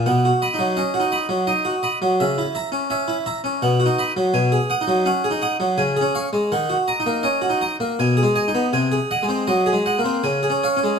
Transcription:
\new Staff \with { instrumentName = "Harpsichord" } { \time 3/4 \key ces \lydian \tempo 4 = 83 << { fis''16 fis'16 <dis'' b''>16 fis16 dis''16 fis'16 <dis'' b''>16 fis16 dis''16 fis'16 <dis'' b''>16 fis16 | fes''16 fes'16 <fes'' bes''>16 des'16 fes''16 fes'16 <fes'' bes''>16 des'16 fis''16 fis'16 <dis'' b''>16 fis16 | \key gis \dorian gis''16 gis'16 <fis'' dis'''>16 fis16 fis''16 gis'16 <fis'' dis'''>16 fis16 gis''16 gis'16 <eis'' cis'''>16 gis16 | fis''16 fis'16 <dis'' ais''>16 ais16 dis''16 fis'16 <dis'' ais''>16 ais16 gis''16 gis'16 <dis'' gis''>16 b16 |
gis''16 gis'16 <dis'' fis''>16 bis16 dis''16 gis'16 <dis'' fis''>16 bis16 gis''16 gis'16 <cis'' eis''>16 gis16 | } \\ { \tuplet 3/2 { b,8 r8 dis'8 des'8 dis'8 r8 } dis'8 r8 | des8 r8 des'8 r8 \tuplet 3/2 { b,8 dis'8 r8 } | \tuplet 3/2 { b,8 r8 dis'8 cis'8 dis'8 r8 cis8 cis'8 r8 } | \tuplet 3/2 { dis8 r8 dis'8 cis'8 dis'8 r8 b,8 gis8 dis'8 } |
\tuplet 3/2 { bis,8 r8 gis8 fis8 gis8 ais8 cis8 cis'8 cis'8 } | } >> }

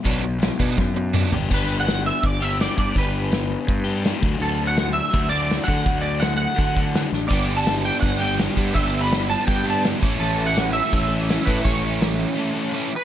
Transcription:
<<
  \new Staff \with { instrumentName = "Clean electric guitar" } { \time 4/4 \key g \lydian \tempo 4 = 165 r1 | b'8. fis''8. e''8 d''8 e''8 d''8 d''8 | b'2. r4 | a'8. fis''8. e''4 d''4 fis''8~ |
fis''8 d''8 fis''8 fis''2 r8 | d''8. a''8. g''8 fis''8 g''8 r4 | e''8. b''8. a''8 g''8 a''8 r4 | a'8. fis''8. e''2 b'8 |
cis''2. r8 b'8 | }
  \new Staff \with { instrumentName = "Overdriven electric guitar" } { \time 4/4 \key g \lydian <fis b d'>8 <fis b>8 <fis b>8 <fis b>8 <fis b>8 <fis b>8 <fis b>8 <b d' g'>8 | <b d' g'>2~ <b d' g'>8 <b d' g'>8 <b d' g'>4 | <b d' g'>2~ <b d' g'>8 <b d' g'>8 <b d' g'>8 <fis a d' fis'>8~ | <fis a d' fis'>2 <fis a d' fis'>8 <fis a d' fis'>4 <fis a d' fis'>8~ |
<fis a d' fis'>2 <fis a d' fis'>8 <fis a d' fis'>4 r8 | <b d' g'>2~ <b d' g'>8 <b d' g'>8 <b d' g'>4 | <b d' g'>2~ <b d' g'>8 <b d' g'>8 <b d' g'>8 <e a cis' a'>8~ | <e a cis' a'>2 <e a cis' a'>8 <e a cis' a'>4 <e a cis' a'>8~ |
<e a cis' a'>2 <e a cis' a'>8 <e a cis' a'>4 r8 | }
  \new Staff \with { instrumentName = "Overdriven electric guitar" } { \time 4/4 \key g \lydian <b, fis b d'>8 r4 <b, fis b d'>8 r4 <b, fis b d'>8 r8 | r1 | r1 | r1 |
r1 | <g, d g b d'>2.~ <g, d g b d'>8 <g, d g b d'>8 | <g, d g b d'>2.~ <g, d g b d'>8 <a, e a cis' e'>8~ | <a, e a cis' e'>2. <a, e a cis' e'>8 <a, e a cis' e'>8~ |
<a, e a cis' e'>2. <a, e a cis' e'>8 r8 | }
  \new Staff \with { instrumentName = "Fingered electric bass" } { \clef bass \time 4/4 \key g \lydian b,,4. b,8 fis,4. g,,8 | g,,2 g,,4. g,8 | g,,2 g,4. d,8 | d,2 d,4. d8 |
d,2 d4. a,,8 | g,,2 g,,4. g,8 | g,,2 g,4. a,,8 | a,,2 a,,4. a,8 |
a,,2 r2 | }
  \new DrumStaff \with { instrumentName = "Drums" } \drummode { \time 4/4 <hho bd>4 <hho sn>8 bd8 <bd sn>4 toml8 tomfh8 | <cymc bd>4 <hho sn>4 <hho bd>4 <hho sn>8 bd8 | <hho bd>4 <hho sn>4 <hho bd>4 <hho sn>8 bd8 | hho4 <hho sn>4 <hho bd>4 <hho sn>8 bd8 |
<hho bd>4 <hho sn>4 <hho bd>8 bd8 <hho sn>8 sn8 | <hho bd>4 <hho sn>4 <hho bd>4 <hho sn>8 bd8 | <hho bd>4 <hho sn>4 <hho bd>4 <hho sn>8 bd8 | hho4 <hho sn>4 <hho bd>4 <hho sn>8 bd8 |
<hho bd>4 <hho sn>4 r4 r4 | }
>>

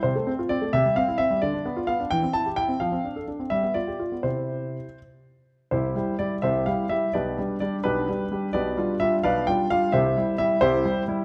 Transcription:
\new Staff \with { instrumentName = "Grand piano" } { \time 6/8 \key c \major \tempo 4. = 86 << { c''4 d''8 e''8 f''8 e''8 | d''4 f''8 g''8 a''8 g''8 | f''4. e''8 d''4 | c''4. r4. |
<e' g' c''>4 d''8 <g' c'' e''>8 f''8 e''8 | <g' b' d''>4 d''8 <d' g' b'>4. | <g' b' d''>4 e''8 <b' d'' f''>8 g''8 f''8 | <g' c'' e''>4 e''8 <e' g' c''>4. | } \\ { c16 a16 c'16 f'16 c'16 a16 c16 g16 c'16 e'16 c'16 g16 | d16 d'16 b16 f'16 b16 d'16 e16 c'16 e'16 g'16 e'16 c'16 | f16 c'16 d'16 a'16 d'16 c'16 g16 b16 f'16 g'16 f'16 b16 | <c e' g'>4. r4. |
<c, c>8 <g e' g'>8 <g e' g'>8 <c, c>8 <g e' g'>8 <g e' g'>8 | <b,, b,>8 <g d' g'>8 <g d' g'>8 <b,, b,>8 <g d' g'>8 <g d' g'>8 | <b,, b,>8 <g d' f'>8 <g d' f'>8 <b,, b,>8 <g d' f'>8 <g d' f'>8 | <c, c>8 <g e'>8 <g e'>8 <c, c>8 <g e'>8 <g e'>8 | } >> }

